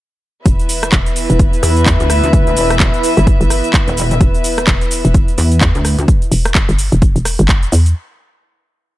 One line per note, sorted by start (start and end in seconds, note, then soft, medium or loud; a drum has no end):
0.46 0.91 E1 medium
0.46 6.04 E3 medium
0.46 6.04 B3 medium
0.46 6.08 E4 medium
0.46 6.04 B4 medium
0.46 6.04 E5 medium
0.46 kick loud
0.46 closed hi-hat medium
0.46 cabasa soft
0.59 closed hi-hat soft
0.59 cabasa soft
0.66 6.08 E5 medium
0.66 open hi-hat loud
0.66 cabasa medium
0.75 6.08 B4 medium
0.83 cross-stick medium
0.83 closed hi-hat medium
0.83 cabasa soft
0.92 1.28 E1 loud
0.92 kick loud
0.92 clap loud
0.92 closed hi-hat medium
0.92 cabasa soft
1.06 closed hi-hat soft
1.06 cabasa soft
1.16 open hi-hat loud
1.16 cabasa medium
1.30 1.61 E1 medium
1.30 closed hi-hat medium
1.30 cabasa soft
1.39 kick loud
1.39 closed hi-hat medium
1.39 cabasa soft
1.53 closed hi-hat soft
1.53 cabasa soft
1.63 1.85 E2 loud
1.63 open hi-hat loud
1.63 cabasa medium
1.77 closed hi-hat medium
1.77 cabasa soft
1.86 1.98 E2 loud
1.86 kick loud
1.86 clap loud
1.86 closed hi-hat medium
1.86 cabasa soft
2.00 2.21 D2 loud
2.00 closed hi-hat soft
2.00 cabasa soft
2.10 cross-stick medium
2.10 open hi-hat medium
2.10 cabasa medium
2.24 2.55 D2 loud
2.24 closed hi-hat medium
2.24 cabasa soft
2.33 kick loud
2.33 closed hi-hat medium
2.33 cabasa soft
2.47 closed hi-hat soft
2.47 cabasa soft
2.57 2.92 E1 loud
2.57 open hi-hat loud
2.57 cabasa medium
2.70 cross-stick medium
2.70 closed hi-hat medium
2.70 cabasa soft
2.80 kick loud
2.80 clap loud
2.80 closed hi-hat medium
2.80 cabasa soft
2.94 closed hi-hat soft
2.94 cabasa soft
3.03 open hi-hat medium
3.03 cabasa medium
3.17 3.39 G1 loud
3.17 closed hi-hat medium
3.17 cabasa soft
3.27 kick loud
3.27 closed hi-hat medium
3.27 cabasa soft
3.41 3.62 G1 loud
3.41 closed hi-hat soft
3.41 cabasa soft
3.50 cross-stick medium
3.50 open hi-hat loud
3.50 cabasa medium
3.64 closed hi-hat medium
3.64 cabasa soft
3.73 kick loud
3.73 clap loud
3.73 closed hi-hat medium
3.73 cabasa soft
3.88 4.19 E1 loud
3.88 closed hi-hat soft
3.88 cabasa soft
3.97 open hi-hat loud
3.97 cabasa medium
4.11 closed hi-hat medium
4.11 cabasa soft
4.21 4.66 E1 medium
4.21 kick loud
4.21 closed hi-hat medium
4.21 cabasa soft
4.34 closed hi-hat soft
4.34 cabasa soft
4.44 open hi-hat loud
4.44 cabasa medium
4.58 cross-stick medium
4.58 closed hi-hat medium
4.58 cabasa soft
4.67 5.03 E1 loud
4.67 kick loud
4.67 clap loud
4.67 closed hi-hat medium
4.67 cabasa soft
4.81 closed hi-hat soft
4.81 cabasa soft
4.91 open hi-hat loud
4.91 cabasa medium
5.05 5.36 E1 medium
5.05 closed hi-hat medium
5.05 cabasa soft
5.14 kick loud
5.14 closed hi-hat medium
5.14 cabasa soft
5.28 closed hi-hat soft
5.28 cabasa soft
5.38 5.60 E2 loud
5.38 open hi-hat loud
5.38 cabasa medium
5.52 closed hi-hat medium
5.52 cabasa soft
5.61 5.73 E2 loud
5.61 kick loud
5.61 clap loud
5.61 closed hi-hat medium
5.61 cabasa soft
5.75 5.96 D2 loud
5.75 closed hi-hat soft
5.75 cabasa soft
5.85 cross-stick medium
5.85 open hi-hat loud
5.85 cabasa medium
5.99 6.07 D2 loud
5.99 closed hi-hat medium
5.99 cabasa soft
6.08 kick loud
6.08 closed hi-hat medium
6.08 cabasa soft
6.22 closed hi-hat soft
6.22 cabasa soft
6.32 6.67 E1 medium
6.32 open hi-hat loud
6.32 cabasa medium
6.45 cross-stick medium
6.45 closed hi-hat medium
6.45 cabasa soft
6.55 kick loud
6.55 clap loud
6.55 closed hi-hat medium
6.55 cabasa soft
6.69 6.90 G1 loud
6.69 closed hi-hat soft
6.69 cabasa soft
6.79 open hi-hat loud
6.79 cabasa medium
6.92 7.14 E1 medium
6.92 closed hi-hat soft
6.92 cabasa soft
7.02 kick loud
7.02 closed hi-hat medium
7.02 cabasa soft
7.16 7.37 E1 medium
7.16 closed hi-hat soft
7.16 cabasa soft
7.25 cross-stick medium
7.25 open hi-hat loud
7.25 cabasa medium
7.39 7.71 G1 loud
7.39 closed hi-hat medium
7.39 cabasa soft
7.48 kick loud
7.48 clap loud
7.48 closed hi-hat medium
7.48 cabasa soft
7.63 closed hi-hat soft
7.63 cabasa soft
7.72 7.94 E2 medium
7.72 open hi-hat loud
7.72 cabasa medium
7.86 closed hi-hat medium
7.86 cabasa soft